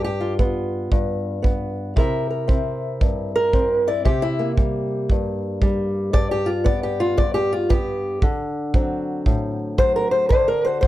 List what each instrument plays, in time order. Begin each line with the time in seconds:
Already playing: steel-string acoustic guitar G2
0.04 steel-string acoustic guitar G4
0.20 steel-string acoustic guitar F4
0.39 steel-string acoustic guitar B3 F4, kick
0.92 steel-string acoustic guitar G2, kick
1.42 steel-string acoustic guitar B3, kick
1.96 steel-string acoustic guitar C3 E4 A#4 E5, kick
2.30 steel-string acoustic guitar A#4
2.48 steel-string acoustic guitar C4 E4, kick
3.01 steel-string acoustic guitar G2, kick
3.36 steel-string acoustic guitar A#4
3.53 steel-string acoustic guitar C4, kick
3.87 steel-string acoustic guitar E4 D5
4.05 steel-string acoustic guitar C3 G4, kick
4.22 steel-string acoustic guitar E4
4.39 steel-string acoustic guitar A#3
4.57 steel-string acoustic guitar G3, kick
5.09 steel-string acoustic guitar G2, kick
5.62 steel-string acoustic guitar G3, kick
6.13 steel-string acoustic guitar G2 D5, kick
6.31 steel-string acoustic guitar G4
6.46 steel-string acoustic guitar F4
6.64 steel-string acoustic guitar B3 D5, kick
6.83 steel-string acoustic guitar G4
7.00 steel-string acoustic guitar F4
7.18 steel-string acoustic guitar G2 D5, kick
7.34 steel-string acoustic guitar G4
7.53 steel-string acoustic guitar F4
7.69 steel-string acoustic guitar B3 G4, kick
8.22 steel-string acoustic guitar D3, kick
8.74 steel-string acoustic guitar F#3 C4, kick
9.26 steel-string acoustic guitar A2, kick
9.78 steel-string acoustic guitar F#3 C5, kick
9.96 steel-string acoustic guitar A#4
10.11 steel-string acoustic guitar C5
10.29 steel-string acoustic guitar D3 C5, kick
10.48 steel-string acoustic guitar A#4
10.65 steel-string acoustic guitar F#4 C5
10.81 steel-string acoustic guitar F#3 C5, kick